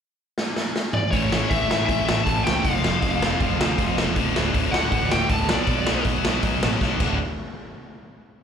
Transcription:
0.38 snare
0.56 snare
0.76 snare
0.93 lead electric guitar D5, mid tom
1.11 picked electric bass A1, distorted electric guitar A2 E3, lead electric guitar C#5, kick, open hi-hat
1.16 distorted electric guitar A3
1.32 picked electric bass A1, distorted electric guitar A2 E3 A3, snare
1.50 picked electric bass A1, distorted electric guitar A2 E3 A3, lead electric guitar E5, kick, open hi-hat
1.69 distorted electric guitar A2 E3 A3, picked electric bass A2, snare
1.86 picked electric bass A1, distorted electric guitar A2 E3 A3, lead electric guitar E5, kick, open hi-hat
2.07 picked electric bass A1, distorted electric guitar A2 E3 A3, snare
2.23 picked electric bass A1, distorted electric guitar A2 E3, lead electric guitar A5, kick, open hi-hat
2.27 distorted electric guitar A3
2.44 picked electric bass C#2, distorted electric guitar A2 E3 A3, lead electric guitar G5, snare
2.60 lead electric guitar F5
2.64 picked electric bass F1, distorted electric guitar F2 C3 F3, kick, open hi-hat
2.82 picked electric bass F1, distorted electric guitar F2 C3 F3, snare
3.02 picked electric bass F1, distorted electric guitar F2 C3 F3, kick, open hi-hat
3.21 picked electric bass F1, distorted electric guitar F2 C3 F3, snare
3.40 picked electric bass F1, distorted electric guitar F2 C3 F3, kick, open hi-hat
3.60 picked electric bass D2, distorted electric guitar F2 C3 F3, snare
3.78 picked electric bass F1, distorted electric guitar F2 C3 F3, kick, open hi-hat
3.97 picked electric bass E1, distorted electric guitar F2 C3 F3, snare
4.16 picked electric bass D1, distorted electric guitar D2 A2 D3, kick, open hi-hat
4.36 picked electric bass D1, distorted electric guitar D2 A2 D3, snare
4.54 picked electric bass D1, distorted electric guitar D2 A2 D3, kick, open hi-hat
4.72 distorted electric guitar D2 A2, picked electric bass D2, lead electric guitar F#5, snare
4.76 distorted electric guitar D3
4.92 picked electric bass D1, distorted electric guitar D2 A2 D3, kick, open hi-hat
5.11 picked electric bass D1, distorted electric guitar D2 A2 D3, lead electric guitar G5, snare
5.29 picked electric bass D1, distorted electric guitar D2 A2 D3, lead electric guitar A5, kick, open hi-hat
5.49 picked electric bass B1, distorted electric guitar B2 F#3 B3, lead electric guitar D5, snare
5.67 picked electric bass B1, distorted electric guitar B2 F#3 B3, kick, open hi-hat
5.87 picked electric bass B1, distorted electric guitar B2 F#3 B3, snare
6.05 picked electric bass B1, distorted electric guitar B2 F#3 B3, kick, open hi-hat
6.24 picked electric bass B1, distorted electric guitar B2 F#3 B3, snare
6.43 picked electric bass B1, distorted electric guitar B2 F#3 B3, kick, open hi-hat
6.62 picked electric bass A1, distorted electric guitar B2 F#3 B3, snare
6.81 picked electric bass B1, distorted electric guitar B2 F#3 B3, kick, snare
7.00 picked electric bass D1, distorted electric guitar D2 A2 D3 A3 F#4, kick, crash

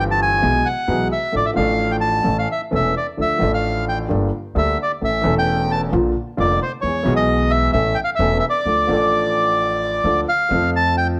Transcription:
Already playing: grand piano G1 G2 E3 G3 C4 G4, upright bass G1
0.11 bandoneon A5
0.22 bandoneon G#5
0.42 grand piano B1 B2 E3 G#3 B3 G#4, upright bass B1
0.66 bandoneon F#5
0.88 grand piano B1 B2 E3 G#3 B3 G#4, upright bass B1
1.12 bandoneon E5
1.32 grand piano A1 A2 F3 A3 D4 A4, upright bass A1
1.36 bandoneon D5
1.46 bandoneon E5
1.54 grand piano A1 A2 F3 A3 D4, upright bass A1, bandoneon F5
1.58 grand piano A4
1.91 bandoneon G5
2.01 bandoneon A5
2.24 grand piano A1 A2 E3 A3 C#4 A4, upright bass A1
2.39 bandoneon F5
2.52 bandoneon E5
2.71 grand piano E1 E2 E3 A3 C#4 A4, upright bass E1
2.75 bandoneon E5
2.97 bandoneon D5
3.17 grand piano D2 D3 F3 A3 D4 A4, upright bass D2
3.21 bandoneon E5
3.38 grand piano A1 A2 F3 A3 D4
3.42 upright bass A1, grand piano A4
3.54 bandoneon F5
3.89 bandoneon G5
4.09 grand piano G1 G2 G3 A#3 D4 A4, upright bass G1
4.55 grand piano D2 D3 G3 A#3 D4 A4, upright bass D2, bandoneon E5
4.82 bandoneon D5
5.01 grand piano A1 A2 E3 A3 C#4 A4, upright bass A1, bandoneon E5
5.21 grand piano E1 E2 E3 A3 C#4 A4, upright bass E1
5.38 bandoneon G5
5.72 bandoneon A5
5.92 grand piano A#1 A#2 D3 F3 A#3 F4, upright bass A#1
6.37 grand piano F1 F2 D3 F3 A#3 F4, upright bass F1, bandoneon D5
6.63 bandoneon C5
6.81 grand piano E2 E3 G#3 B3 G#4, upright bass E2, bandoneon C#5
7.03 grand piano B1 B2 E3 G#3 B3, upright bass B1
7.08 grand piano G#4
7.16 bandoneon D#5
7.50 bandoneon E5
7.72 upright bass A1, grand piano A1 A2 E3 A3 C#4 A4, bandoneon E5
7.95 bandoneon G5
8.04 bandoneon F5
8.15 upright bass E1, grand piano E3, bandoneon E5
8.20 grand piano E1 E2 A3 C#4 A4
8.39 bandoneon E5
8.50 bandoneon D5
8.66 upright bass D2, grand piano D2 D3 F3 A3 D4 A4
8.87 upright bass A1, grand piano A1 A2 F3 A3 D4 A4
10.04 upright bass D2, grand piano D2 D3 F3 A3 D4 A4
10.29 bandoneon F5
10.49 grand piano F2 F3 A3 C4, upright bass F2
10.53 grand piano A4
10.76 bandoneon A5
10.98 bandoneon G5

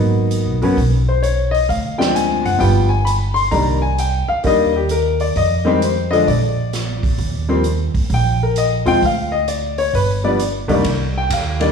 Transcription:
Already playing: upright bass G#1, grand piano F#3 A#3 B3 D#4
0.31 closed hi-hat
0.46 upright bass B1
0.61 upright bass G1, grand piano F#3 A#3 B3 C#4, open hi-hat
0.77 upright bass B1, kick, open hi-hat
1.09 grand piano C5
1.22 grand piano C#5, closed hi-hat
1.51 grand piano D#5, open hi-hat
1.69 upright bass D2, grand piano F5, kick, open hi-hat
1.98 grand piano F3 G#3 C4 D4 G5, snare
2.15 grand piano G#5, closed hi-hat
2.44 upright bass F#1, grand piano F#5, open hi-hat
2.58 upright bass G1, grand piano F3 G3 B3 F4 G5, kick, open hi-hat
2.89 grand piano G#5
3.05 grand piano B5, closed hi-hat
3.34 grand piano C6, open hi-hat
3.51 upright bass C2, grand piano D#3 G3 A#3 D4 A#5, kick, open hi-hat
3.82 grand piano G#5
3.98 grand piano G5, closed hi-hat
4.28 grand piano F5, muted upright bass stroke
4.44 upright bass D#2, grand piano D#3 G3 A#3 D4 D#5, kick, open hi-hat
4.76 grand piano G4
4.89 grand piano A#4, closed hi-hat
5.20 grand piano D5, open hi-hat
5.36 upright bass F2, grand piano D#5, kick, open hi-hat
5.65 grand piano D#3 G3 G#3 C4 G4
5.82 grand piano C5, closed hi-hat
6.11 grand piano D3 F3 G#3 D4 D#5, open hi-hat
6.27 upright bass A#1, grand piano D5, kick, open hi-hat
6.73 snare, closed hi-hat
7.03 kick, open hi-hat
7.18 upright bass D#2, kick, open hi-hat
7.49 grand piano F3 G3 A#3 C4
7.64 closed hi-hat
7.94 upright bass D2, kick, open hi-hat
8.10 upright bass A#1, kick, open hi-hat
8.14 grand piano G5
8.43 grand piano A#4
8.56 grand piano D#5, closed hi-hat
8.85 upright bass D#2, grand piano F3 G#3 C4 F4 G5, open hi-hat
9.02 upright bass D2, grand piano F5, kick, open hi-hat
9.32 grand piano D#5
9.48 grand piano D5, closed hi-hat
9.78 grand piano C#5, open hi-hat
9.93 upright bass G1, grand piano B4, kick, open hi-hat
10.24 grand piano F3 G3 B3 D4 D5
10.39 closed hi-hat
10.68 grand piano C2 D#3 G3 A#3 D4, upright bass C#2, open hi-hat
10.84 upright bass C2, kick, ride
11.18 grand piano G5
11.30 upright bass D#2, grand piano F5, kick, hi-hat pedal, ride
11.60 grand piano D#3 G3 A#3 D4 D5, ride

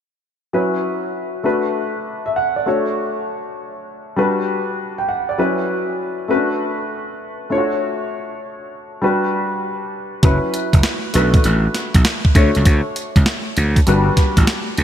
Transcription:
0.53 grand piano F#3 C#4 E4 B4
1.43 grand piano A3 D4 F#4 B4
2.26 grand piano E5
2.36 grand piano F#5
2.56 grand piano D5
2.66 grand piano A3 D4 F#4 C#5
4.16 grand piano G3 D4 F#4 B4
4.98 grand piano G5
5.09 grand piano F#5
5.29 grand piano D5
5.38 grand piano F#3 C#4 E4 B4
6.28 grand piano A3 C#4 F#4 B4
6.35 grand piano D4
7.50 grand piano A3 D4 F4 C#5
7.58 grand piano F#4
9.02 grand piano G3 D4 F#4 B4
10.23 slap bass F#1, grand piano F#3 C#4 E4 B4, kick, closed hi-hat
10.54 closed hi-hat
10.73 slap bass F#1, kick, closed hi-hat
10.83 snare, closed hi-hat
11.13 slap bass B1, grand piano A3 D4 F#4 B4, closed hi-hat
11.34 kick, closed hi-hat
11.44 slap bass A1, closed hi-hat
11.74 snare, closed hi-hat
11.94 slap bass B1, kick, closed hi-hat
12.05 snare, closed hi-hat
12.25 kick
12.35 slap bass D2, grand piano A3 D4 F#4 C#5, kick, closed hi-hat
12.55 slap bass C#2, closed hi-hat
12.65 slap bass D2, kick, closed hi-hat
12.96 closed hi-hat
13.16 slap bass C#2, kick, closed hi-hat
13.26 snare, closed hi-hat
13.57 slap bass D2, closed hi-hat
13.76 kick, closed hi-hat
13.87 slap bass G1, grand piano G3 D4 F#4 B4, closed hi-hat
14.17 kick, snare, closed hi-hat
14.37 slap bass A1, kick, closed hi-hat
14.47 snare, closed hi-hat
14.78 slap bass D2, closed hi-hat

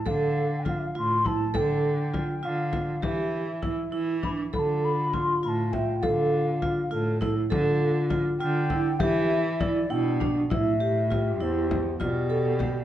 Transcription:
0.06 cello D3, vibraphone A4, flute F5, frame drum
0.36 frame drum
0.59 flute G5
0.65 vibraphone F4, flute F5, frame drum
0.79 flute E5
0.86 flute F5
0.95 cello A2, vibraphone F4, flute C6
1.25 vibraphone E4, flute A5, frame drum
1.54 cello D3, vibraphone A4, flute G5, frame drum
1.85 frame drum
2.14 vibraphone F4, frame drum
2.43 cello D3, vibraphone F4, flute F5
2.73 vibraphone F4, frame drum
3.02 cello E3, vibraphone G4, flute E5, frame drum
3.33 frame drum
3.62 vibraphone E4, frame drum
3.92 cello E3, vibraphone E4
4.23 vibraphone D4, flute B5, frame drum
4.53 cello D3, french horn F4, vibraphone A4, flute B5, frame drum
4.59 flute A5
4.83 flute B5, frame drum
5.13 vibraphone F4, flute C6, frame drum
5.43 cello A2, vibraphone F4, flute B5
5.48 flute A5
5.72 vibraphone E5, flute G5, frame drum
6.02 cello D3, vibraphone A4, flute F5, frame drum
6.33 frame drum
6.62 vibraphone F4, frame drum
6.91 cello A2, vibraphone F4, french horn A4
7.21 vibraphone E4, french horn A4, frame drum
7.50 cello D3, french horn F4, vibraphone A4, frame drum
7.81 frame drum
8.10 vibraphone F4, frame drum
8.39 cello D3, vibraphone F4, flute G5
8.70 vibraphone E4, frame drum
8.99 cello E3, french horn E4, vibraphone G4, flute E5, frame drum
9.30 frame drum
9.60 vibraphone E4, flute D5, frame drum
9.90 cello B2, french horn D4, vibraphone E4, flute G5
10.20 vibraphone D4, frame drum
10.50 cello A2, french horn E4, vibraphone E4, flute E5, frame drum
10.80 vibraphone G4
11.10 vibraphone F4, french horn G4, frame drum
11.40 cello E2, vibraphone E4, flute C5, frame drum
11.71 frame drum
11.99 cello B2, vibraphone F4, french horn G4, flute D5, frame drum
12.30 vibraphone A4
12.59 vibraphone G4, frame drum

